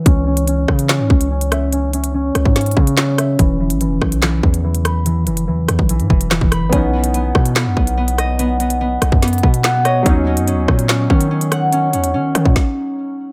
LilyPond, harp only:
\new Staff \with { instrumentName = "Harp" } { \time 4/4 \key des \dorian \tempo 4 = 144 des'8 des'8 des'4 des'8 des'8 des'8 fes''8 | des'8 des'8 des'4 des'8 des'8 des'8 fes''8 | e8 e8 e4 e8 e8 e8 b''8 | e8 e8 e4 e8 e8 e8 b''8 |
b8 b8 b4 b8 b8 b8 dis''8 | b8 b8 b4 b8 b8 b8 dis''8 | des'8 des'8 des'4 des'8 des'8 des'8 ges''8 | des'8 des'8 des'2. | }